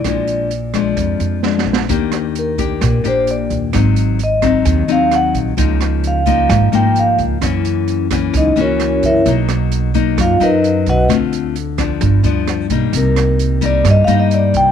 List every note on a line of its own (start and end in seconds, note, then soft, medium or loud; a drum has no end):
0.00 1.63 D5 medium
0.04 0.93 A#1 medium
0.04 0.95 A#2 soft
0.04 0.50 F3 medium
0.04 0.50 G#3 soft
0.04 0.51 D4 medium
0.04 kick soft
0.04 cross-stick medium
0.04 closed hi-hat medium
0.28 closed hi-hat soft
0.51 closed hi-hat soft
0.74 1.39 F3 medium
0.74 1.40 G#3 medium
0.74 1.40 D4 medium
0.74 kick soft
0.74 cross-stick medium
0.74 closed hi-hat soft
0.97 1.18 F2 medium
0.97 1.87 F2 soft
0.97 kick medium
0.97 closed hi-hat medium
1.20 1.63 F2 medium
1.20 closed hi-hat soft
1.43 1.87 F3 soft
1.43 1.88 G#3 medium
1.43 1.88 D4 medium
1.43 snare soft
1.58 snare soft
1.65 1.87 A#1 medium
1.73 snare medium
1.89 2.77 D#2 medium
1.89 2.79 D#3 medium
1.89 2.55 A#3 medium
1.89 2.55 D4 soft
1.89 2.55 G4 medium
1.89 kick medium
1.89 closed hi-hat medium
2.12 cross-stick medium
2.12 closed hi-hat soft
2.35 3.02 A#4 medium
2.35 closed hi-hat soft
2.58 3.01 A#3 medium
2.58 3.01 D4 medium
2.58 3.01 G4 medium
2.58 kick medium
2.58 closed hi-hat soft
2.81 3.03 A#1 loud
2.81 3.71 A#2 medium
2.81 kick medium
2.81 cross-stick medium
2.81 closed hi-hat medium
3.04 3.47 A#1 medium
3.04 3.70 A#3 soft
3.04 3.70 D4 medium
3.04 3.70 G4 medium
3.04 3.28 C5 medium
3.04 closed hi-hat soft
3.27 3.52 D5 medium
3.27 closed hi-hat soft
3.50 3.72 D#2 medium
3.50 kick soft
3.50 closed hi-hat soft
3.73 4.61 G#1 medium
3.73 4.63 G#2 medium
3.73 4.19 F#3 medium
3.73 4.19 C4 medium
3.73 4.19 D#4 medium
3.73 kick medium
3.73 cross-stick medium
3.73 closed hi-hat medium
3.96 closed hi-hat soft
4.19 closed hi-hat soft
4.24 4.87 D#5 medium
4.42 4.85 F#3 medium
4.42 4.85 C4 medium
4.42 4.85 D#4 medium
4.42 kick medium
4.42 cross-stick medium
4.42 closed hi-hat soft
4.65 4.87 D#2 loud
4.65 5.55 D#3 soft
4.65 kick medium
4.65 closed hi-hat medium
4.88 5.31 D#2 medium
4.88 5.54 F#3 medium
4.88 5.54 C4 medium
4.88 5.54 D#4 medium
4.88 5.13 F5 medium
4.88 closed hi-hat soft
5.11 5.36 F#5 medium
5.11 cross-stick medium
5.11 closed hi-hat soft
5.34 5.56 A#1 medium
5.34 kick soft
5.34 closed hi-hat soft
5.57 6.46 C#2 medium
5.57 6.47 C#3 medium
5.57 6.23 F3 medium
5.57 6.23 A#3 medium
5.57 6.23 D#4 medium
5.57 kick medium
5.57 closed hi-hat medium
5.81 cross-stick medium
5.81 closed hi-hat soft
6.04 6.71 F5 medium
6.04 closed hi-hat soft
6.26 6.69 F3 medium
6.26 6.69 A#3 medium
6.26 6.69 D#4 medium
6.26 kick medium
6.26 closed hi-hat soft
6.49 6.71 G#1 loud
6.49 7.39 G#2 medium
6.49 kick medium
6.49 cross-stick medium
6.49 closed hi-hat medium
6.72 7.15 G#1 medium
6.72 7.38 F3 medium
6.72 7.38 A#3 medium
6.72 7.38 D#4 medium
6.72 6.96 G5 medium
6.72 closed hi-hat soft
6.96 7.12 F5 medium
6.96 closed hi-hat soft
7.18 7.40 C#2 medium
7.18 kick medium
7.18 closed hi-hat soft
7.41 8.29 F#2 medium
7.41 8.31 F#2 medium
7.41 8.07 E3 medium
7.41 8.07 A#3 medium
7.41 8.07 C#4 medium
7.41 kick medium
7.41 cross-stick medium
7.41 closed hi-hat medium
7.65 closed hi-hat soft
7.88 closed hi-hat soft
8.11 8.53 E3 medium
8.11 8.53 A#3 medium
8.11 8.53 C#4 medium
8.11 kick medium
8.11 cross-stick medium
8.11 closed hi-hat soft
8.33 8.55 C#2 loud
8.33 9.23 C#3 soft
8.33 kick medium
8.33 closed hi-hat medium
8.37 8.58 D#4 medium
8.37 8.58 D#5 medium
8.56 8.99 C#2 medium
8.56 9.21 E3 medium
8.56 9.22 A#3 medium
8.56 9.22 C#4 medium
8.56 closed hi-hat soft
8.61 9.02 C#4 medium
8.61 9.01 F#4 medium
8.61 9.02 A#4 medium
8.61 9.01 C#5 medium
8.80 cross-stick medium
8.80 closed hi-hat soft
9.03 9.24 F#2 medium
9.03 9.27 E4 medium
9.03 9.27 A#4 medium
9.03 9.27 C#5 medium
9.03 9.26 E5 medium
9.03 kick medium
9.03 closed hi-hat soft
9.26 10.14 B1 medium
9.26 10.15 B2 medium
9.26 9.91 F#3 medium
9.26 9.91 A#3 medium
9.26 9.91 D#4 medium
9.26 kick medium
9.26 closed hi-hat medium
9.49 cross-stick medium
9.49 closed hi-hat soft
9.72 closed hi-hat soft
9.94 10.37 F#3 medium
9.94 10.37 A#3 medium
9.94 10.37 D#4 medium
9.94 kick medium
9.94 closed hi-hat soft
10.17 11.07 F#2 medium
10.17 10.39 F#2 loud
10.17 kick medium
10.17 cross-stick medium
10.17 closed hi-hat medium
10.21 10.42 F4 medium
10.21 10.42 F5 medium
10.40 10.83 F#2 medium
10.40 11.05 F#3 medium
10.40 11.06 D#4 medium
10.40 10.85 D#4 medium
10.40 10.85 A#4 medium
10.40 10.85 B4 medium
10.40 10.84 D#5 medium
10.40 closed hi-hat soft
10.64 closed hi-hat soft
10.86 11.08 B1 medium
10.86 11.03 F#4 medium
10.86 11.02 B4 medium
10.86 11.02 D#5 medium
10.86 11.02 F#5 medium
10.86 kick medium
10.86 closed hi-hat soft
11.08 11.97 D2 medium
11.08 11.98 D3 medium
11.08 11.55 A3 medium
11.08 11.55 C4 medium
11.08 11.55 F4 medium
11.08 kick medium
11.08 cross-stick medium
11.08 closed hi-hat medium
11.33 closed hi-hat soft
11.56 closed hi-hat soft
11.78 12.20 F3 medium
11.78 12.20 B3 medium
11.78 12.21 D4 medium
11.78 kick medium
11.78 cross-stick medium
11.78 closed hi-hat soft
12.01 12.22 G1 loud
12.01 12.91 G2 medium
12.01 kick medium
12.01 closed hi-hat medium
12.23 12.66 D2 medium
12.23 12.66 F3 medium
12.23 12.66 B3 medium
12.23 12.67 D4 medium
12.23 closed hi-hat soft
12.48 cross-stick medium
12.48 closed hi-hat soft
12.70 12.91 B1 medium
12.70 13.58 G3 medium
12.70 13.59 A#3 medium
12.70 13.59 D#4 medium
12.70 kick medium
12.70 closed hi-hat soft
12.93 13.81 C2 medium
12.93 13.83 C3 medium
12.93 kick medium
12.93 closed hi-hat medium
12.97 13.60 A#4 medium
13.16 cross-stick medium
13.16 closed hi-hat soft
13.39 closed hi-hat soft
13.61 14.04 G3 medium
13.61 14.04 A#3 medium
13.61 14.04 D#4 medium
13.61 kick medium
13.61 closed hi-hat soft
13.66 13.86 D5 medium
13.84 14.72 G2 medium
13.84 14.06 G2 loud
13.84 kick medium
13.84 cross-stick medium
13.84 closed hi-hat medium
13.90 14.02 D#5 medium
14.04 14.50 G2 medium
14.04 14.72 G3 medium
14.04 14.72 A#3 medium
14.04 14.72 D#4 medium
14.04 14.17 F5 medium
14.04 closed hi-hat soft
14.20 14.32 D#5 medium
14.31 14.55 D5 medium
14.31 closed hi-hat soft
14.54 14.72 C2 medium
14.54 14.72 G5 medium
14.54 kick medium
14.54 closed hi-hat soft